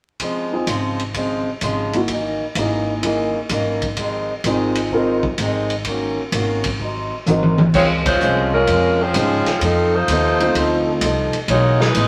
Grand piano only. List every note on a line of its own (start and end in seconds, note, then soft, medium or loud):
0.52 0.66 C4 soft
0.52 0.66 D#4 soft
0.52 0.67 F4 soft
0.52 0.67 G#4 medium
1.94 2.08 A#3 soft
1.94 2.08 D#4 soft
1.94 2.08 E4 soft
1.94 2.09 F#4 medium
2.57 3.02 A#3 soft
2.57 3.02 D#4 soft
2.57 3.03 E4 soft
2.57 3.03 G#4 soft
3.03 3.32 A#3 soft
3.03 3.33 D#4 soft
3.03 3.33 E4 soft
3.03 3.33 G#4 medium
4.45 4.91 C4 soft
4.45 4.91 D#4 soft
4.45 4.91 F4 soft
4.45 4.92 G#4 medium
4.92 5.21 C4 medium
4.92 5.21 D#4 medium
4.92 5.22 F4 soft
4.92 5.22 A#4 medium
7.27 7.56 C4 soft
7.27 7.56 D#4 soft
7.27 7.57 F#4 soft
7.27 7.57 A#4 soft
9.15 9.43 G#3 medium
9.15 9.44 C4 soft
9.15 9.44 C#4 soft
9.15 9.44 D#4 soft
9.15 9.44 F4 medium
10.40 10.99 A3 medium
10.40 11.00 C4 medium
10.40 11.00 D#4 medium
10.40 11.00 F4 medium